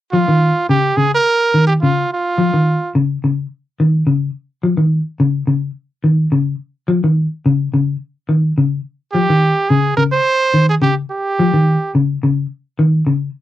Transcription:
0.12 F3 F4
0.28 D#3
0.69 C#3 G4
0.97 C#3 G#4
1.14 A#4
1.54 D#3
1.67 G4
1.82 C#3 F4
2.13 F4
2.38 F3
2.54 D#3
2.95 C#3
3.24 C#3
3.80 D#3
4.07 C#3
4.63 F3
4.77 D#3
5.20 C#3
5.47 C#3
6.04 D#3
6.32 C#3
6.88 F3
7.04 D#3
7.46 C#3
7.74 C#3
8.29 D#3
8.58 C#3
9.12 F3 G4
9.30 D#3
9.69 C#3 G#4
9.97 C#3 A#4
10.12 C5
10.54 D#3
10.69 G#4
10.82 C#3 G4
11.11 G4
11.39 F3
11.54 D#3
11.95 C#3
12.23 C#3
12.79 D#3
13.07 C#3

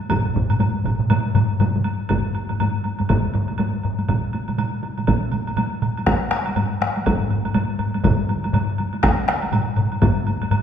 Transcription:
0.00 taiko high
0.09 taiko, taiko low-mid, taiko mid, taiko high, high woodblock
0.25 taiko low-mid, taiko mid, taiko high
0.34 taiko, taiko low-mid, taiko mid, taiko high
0.49 taiko low-mid, taiko mid, taiko high, high woodblock
0.59 taiko low-mid, taiko mid, taiko high, high woodblock
0.74 taiko high
0.84 taiko, taiko low-mid, taiko mid, taiko high, high woodblock
0.99 taiko low-mid, taiko mid, taiko high
1.09 taiko low-mid, taiko mid, taiko high, high woodblock
1.26 taiko high
1.35 taiko low-mid, taiko mid, taiko high, high woodblock
1.51 taiko high
1.60 taiko low-mid, taiko mid, taiko high, high woodblock
1.75 taiko low-mid, taiko mid, taiko high
1.84 taiko high, high woodblock
2.00 taiko high
2.09 taiko, taiko low-mid, taiko high, high woodblock
2.35 high woodblock
2.49 taiko low-mid, taiko high, high woodblock
2.60 taiko low-mid, taiko high, high woodblock
2.84 taiko high, high woodblock
2.99 taiko low-mid, taiko high, high woodblock
3.09 taiko, taiko low-mid, taiko high, high woodblock
3.34 taiko low-mid, taiko high, high woodblock
3.48 taiko high, high woodblock
3.58 taiko low-mid, taiko high, high woodblock
3.83 taiko low-mid, high woodblock
3.99 taiko high, high woodblock
4.08 taiko, taiko mid, taiko high, high woodblock
4.33 taiko high, high woodblock
4.48 taiko mid, taiko high, high woodblock
4.58 taiko mid, taiko high, high woodblock
4.83 taiko high, high woodblock
4.98 taiko mid, taiko high, high woodblock
5.07 taiko, taiko mid, taiko high, high woodblock
5.32 taiko mid, taiko high, high woodblock
5.47 taiko high, high woodblock
5.57 taiko mid, taiko high, high woodblock
5.82 taiko mid, high woodblock
5.97 taiko high, high woodblock
6.07 taiko rim, taiko, taiko high, high woodblock
6.31 taiko rim, high woodblock
6.46 taiko high, high woodblock
6.56 taiko low-mid, taiko high, high woodblock
6.81 taiko rim, taiko high, high woodblock
6.96 taiko high, high woodblock
7.06 taiko, taiko low-mid, taiko high, high woodblock
7.20 taiko low-mid
7.31 taiko low-mid, taiko high, high woodblock
7.45 taiko low-mid, taiko high, high woodblock
7.54 taiko low-mid, taiko high, high woodblock
7.79 taiko low-mid, high woodblock
7.94 taiko high, high woodblock
8.04 taiko, taiko low-mid, taiko mid, taiko high, high woodblock
8.29 taiko high, high woodblock
8.44 taiko high, high woodblock
8.53 taiko low-mid, taiko mid, taiko high, high woodblock
8.78 taiko high, high woodblock
8.93 taiko high, high woodblock
9.03 taiko rim, taiko, taiko high, high woodblock
9.28 taiko rim, taiko high, high woodblock
9.42 taiko high, high woodblock
9.52 taiko low-mid, taiko mid, taiko high, high woodblock
9.76 taiko low-mid, taiko mid, taiko high, high woodblock
9.92 taiko high, high woodblock
10.01 taiko, taiko low-mid, taiko high, high woodblock
10.27 taiko high, high woodblock
10.41 taiko low-mid, taiko high, high woodblock
10.51 taiko low-mid, taiko high, high woodblock

